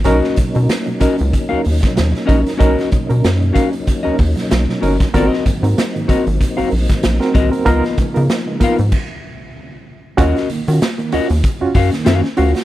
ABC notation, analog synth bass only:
X:1
M:4/4
L:1/16
Q:"Swing 16ths" 1/4=95
K:Ebdor
V:1 name="Analog synth bass" clef=bass
=B,,, z =B,, B,, z2 ^C,, C,, z ^D,, D,, z D,, z ^A,,, z | =B,,, z =B,, B,, ^F,,2 z3 ^D,, D,, z B,,, z =G,,, z | A,,, z A,, A,, z2 A,,, A,,, z B,,, B,,, z B,,, z C,, z | D,, z D, D, z2 A,, A,, z8 |
E,, z E, E, z2 E,, E,, z G,, G,, z G,, z =D,, z |]